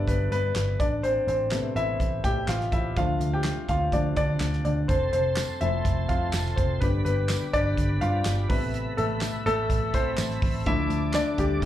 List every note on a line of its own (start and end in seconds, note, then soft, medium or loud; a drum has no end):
0.00 0.76 D3 medium
0.00 0.76 G3 soft
0.00 0.09 B3 medium
0.00 0.81 D4 medium
0.00 0.82 E4 medium
0.00 0.80 D5 medium
0.00 0.81 E5 medium
0.08 0.27 G1 medium
0.08 0.31 B3 medium
0.08 0.30 B4 medium
0.08 kick medium
0.08 closed hi-hat medium
0.31 0.51 G2 medium
0.31 0.77 B3 medium
0.31 0.77 B4 medium
0.31 closed hi-hat medium
0.55 0.75 G1 medium
0.55 snare medium
0.55 clap medium
0.55 closed hi-hat medium
0.80 1.19 A1 medium
0.80 1.03 D4 medium
0.80 1.02 D5 medium
0.80 kick loud
0.80 closed hi-hat medium
1.03 1.27 C4 medium
1.03 1.27 C5 medium
1.03 closed hi-hat medium
1.27 1.57 A1 medium
1.27 1.73 C4 medium
1.27 1.78 C5 medium
1.27 closed hi-hat medium
1.51 2.92 C3 soft
1.51 2.93 A3 soft
1.51 2.93 B3 medium
1.51 snare medium
1.51 clap medium
1.51 closed hi-hat medium
1.76 1.96 A1 medium
1.76 2.21 E4 medium
1.76 2.26 E5 loud
1.76 closed hi-hat medium
2.00 2.20 A1 loud
2.00 kick medium
2.00 closed hi-hat medium
2.24 2.44 A2 medium
2.24 2.47 G4 medium
2.24 2.46 G5 medium
2.24 kick medium
2.24 closed hi-hat medium
2.48 2.68 A1 medium
2.48 2.72 F4 medium
2.48 2.73 F5 medium
2.48 snare medium
2.48 clap medium
2.48 closed hi-hat medium
2.60 snare soft
2.72 2.92 A1 medium
2.72 2.96 E4 medium
2.72 2.97 E5 medium
2.72 kick medium
2.72 closed hi-hat medium
2.96 3.16 D2 medium
2.96 3.29 F3 soft
2.96 3.29 A3 soft
2.96 3.29 D4 medium
2.96 3.31 F4 medium
2.96 3.34 F5 medium
2.96 kick medium
2.96 closed hi-hat medium
3.20 3.50 D2 medium
3.20 closed hi-hat medium
3.34 3.67 G4 medium
3.34 3.70 G5 medium
3.44 snare loud
3.44 clap medium
3.44 closed hi-hat medium
3.68 3.88 D2 medium
3.68 3.92 F4 medium
3.68 3.94 F5 medium
3.68 kick medium
3.68 closed hi-hat medium
3.92 4.12 D2 medium
3.92 4.15 F3 soft
3.92 4.15 A3 soft
3.92 4.16 D4 medium
3.92 4.16 D5 medium
3.92 kick medium
3.92 closed hi-hat medium
4.16 4.36 D3 medium
4.16 4.62 D4 medium
4.16 4.63 D5 loud
4.16 kick medium
4.16 closed hi-hat medium
4.40 4.60 D2 loud
4.40 snare medium
4.40 clap medium
4.40 closed hi-hat medium
4.53 snare soft
4.65 4.85 D2 medium
4.65 4.88 D4 medium
4.65 4.90 D5 medium
4.65 closed hi-hat medium
4.88 5.09 F1 medium
4.88 5.12 C4 medium
4.88 6.80 A4 medium
4.88 5.11 C5 medium
4.88 6.80 A5 medium
4.88 6.80 C6 medium
4.88 kick medium
4.88 closed hi-hat medium
5.13 5.42 F1 medium
5.13 5.58 C4 medium
5.13 5.58 C5 medium
5.13 closed hi-hat medium
5.36 snare loud
5.36 clap medium
5.36 closed hi-hat medium
5.36 tambourine medium
5.61 5.81 F1 medium
5.61 6.77 F3 medium
5.61 6.78 A3 soft
5.61 6.57 C4 medium
5.61 6.07 E4 medium
5.61 6.10 E5 medium
5.61 closed hi-hat medium
5.85 6.05 F1 medium
5.85 kick medium
5.85 closed hi-hat medium
6.09 6.35 F2 medium
6.09 6.32 F4 medium
6.09 6.31 F5 medium
6.09 kick medium
6.09 closed hi-hat medium
6.33 6.53 F1 loud
6.33 snare medium
6.33 clap medium
6.33 closed hi-hat medium
6.33 tambourine medium
6.46 snare soft
6.56 6.77 F1 medium
6.56 6.80 C4 medium
6.56 6.79 C5 medium
6.56 kick medium
6.56 closed hi-hat medium
6.80 7.01 G1 medium
6.80 8.46 D3 soft
6.80 8.46 G3 soft
6.80 6.88 B3 medium
6.80 8.48 G4 medium
6.80 6.86 B4 medium
6.80 8.49 D5 medium
6.80 10.63 B5 medium
6.80 kick medium
6.80 closed hi-hat medium
7.05 7.35 G1 medium
7.05 7.51 B3 medium
7.05 7.55 B4 medium
7.05 closed hi-hat medium
7.29 snare loud
7.29 clap medium
7.29 closed hi-hat medium
7.29 tambourine medium
7.53 7.73 G1 medium
7.53 7.99 D4 medium
7.53 8.03 D5 loud
7.53 kick medium
7.53 closed hi-hat medium
7.77 7.97 G1 medium
7.77 kick medium
7.77 closed hi-hat medium
8.01 8.21 G2 medium
8.01 8.25 F4 medium
8.01 8.24 F5 medium
8.01 closed hi-hat medium
8.25 8.46 G1 medium
8.25 snare loud
8.25 clap medium
8.25 closed hi-hat medium
8.25 tambourine medium
8.49 8.89 A1 medium
8.49 8.82 C3 soft
8.49 8.82 A3 soft
8.49 8.95 B3 medium
8.49 10.64 A4 medium
8.49 8.99 B4 medium
8.49 10.65 E5 medium
8.49 kick loud
8.49 open hi-hat medium
8.74 closed hi-hat medium
8.97 9.28 A1 medium
8.97 9.43 A3 medium
8.97 9.45 A4 medium
8.97 closed hi-hat medium
9.21 snare loud
9.21 clap medium
9.21 closed hi-hat medium
9.21 tambourine medium
9.46 9.66 A1 medium
9.46 9.91 A3 medium
9.46 9.91 A4 loud
9.46 closed hi-hat medium
9.70 9.90 A1 loud
9.70 kick medium
9.70 closed hi-hat medium
9.94 10.14 A2 medium
9.94 10.63 C4 medium
9.94 10.69 C5 loud
9.94 kick medium
9.94 closed hi-hat medium
10.17 10.38 A1 medium
10.17 snare loud
10.17 clap medium
10.17 closed hi-hat medium
10.17 tambourine medium
10.30 snare soft
10.42 10.62 A1 medium
10.42 kick medium
10.42 open hi-hat medium
10.66 10.86 D2 medium
10.66 11.58 D3 medium
10.66 11.59 F3 soft
10.66 11.59 A3 medium
10.66 11.12 E4 medium
10.66 11.62 A4 medium
10.66 11.62 D5 medium
10.66 11.16 E5 loud
10.66 11.62 D6 medium
10.66 kick loud
10.66 closed hi-hat medium
10.89 11.19 D2 medium
10.89 closed hi-hat medium
11.13 11.37 D4 medium
11.13 11.39 D5 medium
11.13 snare loud
11.13 clap medium
11.13 closed hi-hat loud
11.13 tambourine medium
11.38 11.58 D2 medium
11.38 11.61 G3 medium
11.38 11.65 G4 medium
11.38 kick medium
11.38 closed hi-hat medium
11.62 11.65 E2 medium
11.62 kick medium